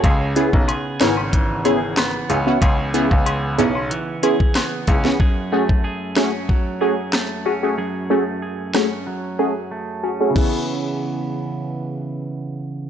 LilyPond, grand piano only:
\new Staff \with { instrumentName = "Grand piano" } { \clef bass \time 4/4 \key cis \minor \tempo 4 = 93 cis,8 r16 b,,16 r8 gis,,4.~ gis,,16 r16 cis,16 r16 | cis,8. cis,8. b,,8 r4. cis,16 r16 | r1 | r1 |
r1 | }